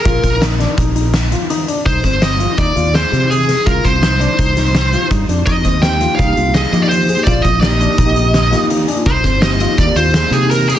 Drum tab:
HH |xxxxxxxxxx|xxxxxxxxxx|xxxxxxxxxx|xxxxxxxxxx|
SD |--oo--o---|-oo---o--o|--o--oo-o-|-oooo-o---|
BD |oo--o-----|oo--o-----|oo--o---o-|oo--o-----|

HH |xxxxxxxxxx|xxxxxxxxxx|
SD |--o---oo--|-oo---o---|
BD |oo--o-----|oo--o-----|